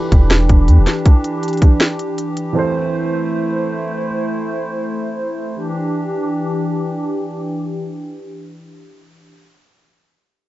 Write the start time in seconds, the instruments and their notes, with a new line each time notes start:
Already playing: grand piano E3 D4 G4 B4, analog synth pad E3 D4 G4, harp D4 F4 G4 A4 B4
0.12 808-style bass E1, kick, closed hi-hat
0.31 snare, closed hi-hat
0.49 808-style bass E1, kick, closed hi-hat
0.68 808-style bass E2, closed hi-hat
0.78 808-style bass E1
0.87 snare, closed hi-hat
1.06 kick, closed hi-hat
1.24 closed hi-hat
1.43 closed hi-hat
1.48 closed hi-hat
1.53 closed hi-hat
1.57 closed hi-hat
1.62 kick, closed hi-hat
1.80 snare, closed hi-hat
1.99 closed hi-hat
2.18 closed hi-hat
2.37 closed hi-hat
2.53 grand piano E3 C4 A4, analog synth pad A3 E4 C5
2.59 grand piano C5
5.56 analog synth pad E3 D4 G4